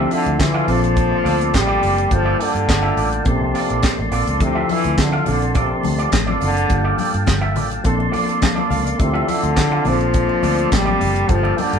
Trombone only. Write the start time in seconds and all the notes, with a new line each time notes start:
Already playing: C3
0.14 D3
0.42 E3
0.71 F3
1.57 G3
2.15 F3
2.43 D3
3.28 C3
4.44 C3
4.72 E3
5.00 D3
5.29 D3
5.58 C3
6.44 D3
9.02 C3
9.31 D3
9.89 F3
10.75 G3
11.31 F3
11.61 D3